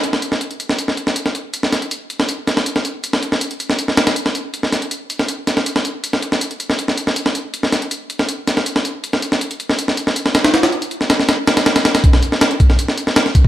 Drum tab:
HH |x-x-xxx-x-x-x-x-|x-xxx-x-x-x-x-x-|x-x-xxx-x-xxx-x-|x-xxx-x-x-x-x-x-|
SD |-o-o---o-o-o-o--|-oo----o--oo-o--|-o-o---o-ooo-o--|-oo----o--oo-o--|
BD |----------------|----------------|----------------|----------------|

HH |x-x-xxx-x-x-x-x-|x-xxx-x-x-x-x-x-|x-x-xxx-x-x-x-xx|xxxxx-x-x-xxxxxx|
SD |-o-o---o-o-o-o--|-oo----o--oo-o--|-o-o---o-o-o-ooo|oo---oooo-oooooo|
BD |----------------|----------------|----------------|----------------|

HH |x-x-xxx-x-x-x-x-|
SD |-o-oo--o-o-ooo--|
BD |o-----o-------oo|